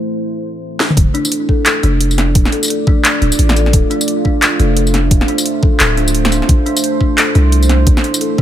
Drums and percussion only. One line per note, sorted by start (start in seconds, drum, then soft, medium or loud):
0.80 snare medium
0.90 mid tom medium
0.97 kick loud
0.97 closed hi-hat medium
1.15 closed hi-hat soft
1.25 tambourine medium
1.32 closed hi-hat medium
1.49 kick medium
1.66 clap loud
1.66 closed hi-hat medium
1.83 closed hi-hat soft
2.01 closed hi-hat medium
2.11 tambourine soft
2.18 snare medium
2.18 closed hi-hat soft
2.35 kick loud
2.35 closed hi-hat medium
2.45 snare medium
2.52 closed hi-hat soft
2.63 tambourine medium
2.64 tambourine soft
2.68 closed hi-hat medium
2.68 tambourine soft
2.87 kick loud
3.05 clap loud
3.05 closed hi-hat medium
3.22 closed hi-hat soft
3.32 tambourine medium
3.39 closed hi-hat medium
3.49 snare medium
3.56 closed hi-hat soft
3.56 tambourine soft
3.66 snare soft
3.73 kick loud
3.73 closed hi-hat medium
3.91 closed hi-hat soft
4.01 tambourine medium
4.08 closed hi-hat medium
4.25 kick medium
4.42 clap loud
4.42 closed hi-hat medium
4.60 closed hi-hat soft
4.77 closed hi-hat medium
4.87 tambourine soft
4.94 snare medium
4.94 closed hi-hat soft
5.11 kick loud
5.11 closed hi-hat medium
5.21 snare medium
5.28 closed hi-hat soft
5.38 tambourine medium
5.46 closed hi-hat medium
5.63 kick loud
5.80 clap loud
5.80 closed hi-hat medium
5.97 closed hi-hat soft
6.08 tambourine medium
6.15 closed hi-hat medium
6.25 snare medium
6.32 closed hi-hat soft
6.32 tambourine soft
6.42 snare soft
6.49 kick loud
6.49 closed hi-hat medium
6.66 closed hi-hat soft
6.77 tambourine medium
6.84 closed hi-hat medium
7.01 kick medium
7.18 clap loud
7.18 closed hi-hat medium
7.35 closed hi-hat soft
7.52 closed hi-hat medium
7.63 tambourine soft
7.69 snare soft
7.69 closed hi-hat soft
7.87 kick loud
7.87 closed hi-hat medium
7.97 snare medium
8.04 closed hi-hat soft
8.14 tambourine medium
8.21 closed hi-hat medium
8.38 kick loud